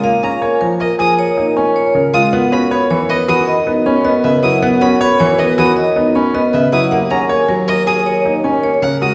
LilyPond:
<<
  \new Staff \with { instrumentName = "Violin" } { \time 6/4 \key fis \mixolydian \tempo 4 = 157 r8 ais''8 r4 dis''8 dis'''8 r2 r8 dis'''8 | r8 b''8 r4 dis''8 dis'''8 r2 e''8 dis'''8 | r8 b''8 r4 dis''8 dis'''8 r2 e''8 dis'''8 | r8 ais''8 r4 dis''8 dis'''8 r2 fis''8 dis'''8 | }
  \new Staff \with { instrumentName = "Vibraphone" } { \time 6/4 \key fis \mixolydian eis''8 r8 gis''8 ais'8 r8 gis''8 cis''8 r8 gis''8 cis''8 r8 eis''8 | fis''8 r8 b''8 cis''8 r8 b''8 dis''8 r8 b''8 dis''8 r8 fis''8 | fis''8 r8 b''8 cis''8 r8 b''8 dis''8 r8 b''8 dis''8 r8 fis''8 | fis''8 r8 gis''8 ais'8 r8 gis''8 cis''8 r8 gis''8 cis''8 r8 fis''8 | }
  \new Staff \with { instrumentName = "Grand piano" } { \time 6/4 \key fis \mixolydian r8 gis'8 cis''8 r8 ais'8 gis'8 r8 dis'8 cis'8 r8 ais'8 eis'8 | r8 fis'8 cis''8 r8 b'8 fis'8 r8 dis'8 cis'8 r8 b'8 e'8 | r8 fis'8 cis''8 r8 b'8 fis'8 r8 dis'8 cis'8 r8 b'8 e'8 | r8 gis'8 cis''8 r8 ais'8 gis'8 r8 dis'8 cis'8 r8 ais'8 fis'8 | }
  \new Staff \with { instrumentName = "Grand piano" } { \time 6/4 \key fis \mixolydian ais8 cis'8 ais8 eis8 ais8 eis8 r8 ais8 cis'8 r8 cis8 gis8 | b8 cis'8 b8 e8 b8 e8 r8 b8 cis'8 b8 cis8 fis8 | b8 cis'8 b8 e8 b8 e8 r8 b8 cis'8 b8 cis8 fis8 | ais8 cis'8 ais8 fis8 ais8 fis8 r8 ais8 cis'8 ais8 cis8 gis8 | }
  \new Staff \with { instrumentName = "Bassoon" } { \clef bass \time 6/4 \key fis \mixolydian ais,1. | fis,1.~ | fis,1. | dis,1. | }
>>